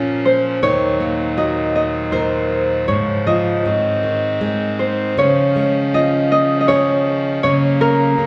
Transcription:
Already playing: nylon-string guitar A#2 F3 A#3 C#4, pipe organ A#2 F3 C#4, harp A#4 C#5
0.25 harp C5
0.63 pipe organ D#2 F#3, nylon-string guitar D#3, harp C#5
1.00 nylon-string guitar A#3
1.37 nylon-string guitar F#4, harp D#5
1.76 harp D#5
2.12 nylon-string guitar A#4, harp C5
2.88 pipe organ G#2 C#3 F3, nylon-string guitar G#2, harp C#5
3.27 nylon-string guitar F3, harp D#5
3.64 nylon-string guitar G#2, pipe organ D#3 C4
4.03 nylon-string guitar D#3
4.41 nylon-string guitar G#3
4.79 harp C5
5.18 nylon-string guitar C#3, pipe organ F3 C#4, harp C#5
5.56 nylon-string guitar G#3
5.94 nylon-string guitar F4, harp D#5
6.32 harp D#5
6.60 harp D#5
6.68 nylon-string guitar G#4, harp C#5
7.43 pipe organ C#3 F#3 A#3, nylon-string guitar C#3, harp C#5
7.81 nylon-string guitar A#3, harp A#4
8.18 nylon-string guitar C#3

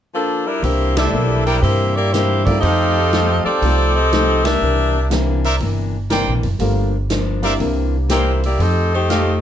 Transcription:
0.15 saxophone section F3 A#3 D4 A4
0.47 saxophone section G3 D4 E4 A#4
0.62 upright bass C2, steel-string acoustic guitar C3 E3 A#3 D4, saxophone section A#3 E4 G4 C5, open hi-hat
0.96 saxophone section G3 D4 E4 A4, trumpet section G4 C5 D5 E5, snare, ride
1.12 upright bass B1, steel-string acoustic guitar C3 E3 A#3 D4
1.45 saxophone section G3 D4 E4 A#4, trumpet section A#4 C5 D5 G5, open hi-hat
1.62 upright bass G2, steel-string acoustic guitar C3 E3 A#3 D4, saxophone section A#3 E4 G4 C5, open hi-hat
1.96 saxophone section A#3 E4 G4 D5
2.13 steel-string acoustic guitar C3 E3 A#3 D4, saxophone section A#3 E4 G4 C5, snare, closed hi-hat
2.44 upright piano G3 A3 C4 D#4 F4, saxophone section A#3 E4 G4 D5, kick, open hi-hat
2.60 upright bass F2, steel-string acoustic guitar F3 A3 D#4 G4, saxophone section C4 G4 A4 D#5, trumpet section D#4 G4 A4 F5, open hi-hat
3.13 steel-string acoustic guitar F3 A3 D#4 G4, snare, closed hi-hat
3.45 saxophone section C4 G4 A4 D5, muted upright bass stroke
3.61 upright bass C2, steel-string acoustic guitar F3 A3 D#4 G4, upright piano G3 A3 C4 D#4 F4, open hi-hat
3.95 saxophone section C4 G4 A4 D#5
4.12 steel-string acoustic guitar F3 A3 D#4 G4, snare, closed hi-hat
4.44 saxophone section D4 G4 A#4 E5, snare, ride
4.62 upright bass C2, steel-string acoustic guitar C3 E3 A#3 D4
5.10 steel-string acoustic guitar C3 E3 A#3 D4, upright piano G3 A#3 C4 D4 E4, snare, closed hi-hat
5.44 trumpet section A#4 C5 D5 E5, open hi-hat
5.60 upright bass G1, steel-string acoustic guitar C3 E3 A#3 D4, open hi-hat
6.10 steel-string acoustic guitar C3 E3 A#3 D4, trumpet section A#4 C5 D5 G5, snare, closed hi-hat
6.27 upright bass A#1
6.43 upright bass F#1, open hi-hat
6.59 upright bass G1, steel-string acoustic guitar G2 F3 A#3 D4, upright piano G3 A3 A#3 D4 F4, open hi-hat
7.09 steel-string acoustic guitar G2 F3 A#3 D4, snare, closed hi-hat
7.43 upright piano G3 A#3 C4 D4 E4, trumpet section A#4 C5 D5 E5, open hi-hat
7.60 upright bass C2, steel-string acoustic guitar C3 E3 A#3 D4, open hi-hat
8.09 steel-string acoustic guitar C3 E3 A#3 D4, saxophone section A#3 E4 G4 C5, trumpet section A#4 C5 D5 G5, snare, closed hi-hat
8.43 saxophone section A#3 E4 G4 D5, open hi-hat
8.59 upright bass F2, steel-string acoustic guitar F3 A3 D#4 G4, saxophone section C4 G4 A4 D#5, open hi-hat
8.94 saxophone section A3 D#4 G4 C5
9.08 steel-string acoustic guitar F3 A3 D#4 G4, trumpet section G4 A4 D#5 F5, snare, closed hi-hat

